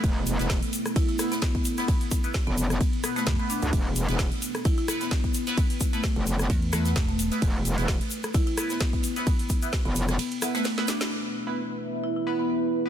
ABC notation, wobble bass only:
X:1
M:4/4
L:1/16
Q:"Swing 16ths" 1/4=130
K:C
V:1 name="Wobble bass" clef=bass
E,,,3 E,,,2 z8 z3 | z4 z F,,,3 z6 z D,, | E,,,3 E,,,2 z8 z3 | z4 z F,,,3 z8 |
E,,,3 E,,,2 z8 z3 | z4 z F,,,3 z8 | z16 |]